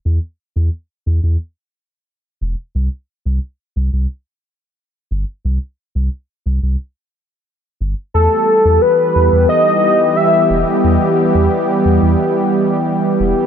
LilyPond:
<<
  \new Staff \with { instrumentName = "Soft synth lead" } { \time 4/4 \key e \minor \tempo 4 = 89 r1 | r1 | r1 | a'4 b'4 dis''4 e''8. r16 |
r1 | }
  \new Staff \with { instrumentName = "Analog synth pad" } { \time 4/4 \key e \minor r1 | r1 | r1 | <e g b g'>1~ |
<e g b g'>1 | }
  \new Staff \with { instrumentName = "Sub bass" } { \clef bass \time 4/4 \key e \minor e,16 r8 e,16 r8 e,16 e,16 r4. e,,16 r16 | c,16 r8 c,16 r8 c,16 c,16 r4. g,,16 r16 | c,16 r8 c,16 r8 c,16 c,16 r4. g,,16 r16 | e,16 r8 e,16 r8 e,16 e,16 r4. e,,16 r16 |
e,16 r8 e,16 r8 e,16 e,16 r4. e,,16 r16 | }
>>